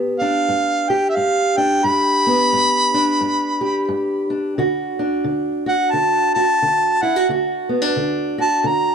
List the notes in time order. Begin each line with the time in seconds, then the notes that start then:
Already playing: G2 B3 G4
0.20 D4 F5
0.48 G2
0.89 G4 G5
1.09 E5
1.16 G2 F5
1.57 D4 G5
1.84 G2 G4 B5
2.26 B3
2.53 G2
2.94 D4
3.21 G2
3.61 G4
3.89 G2
4.30 D4
4.58 D3 F#4
4.99 D4
5.24 D3
5.66 F#4 F#5
5.91 D3 A5
6.34 F#4 A5
6.62 D3
7.02 E4 F#5
7.16 F#4
7.29 D3 F#4
7.69 B3
7.82 D4
7.96 D3
8.38 F#4 A5
8.62 D3 A5
8.67 A#5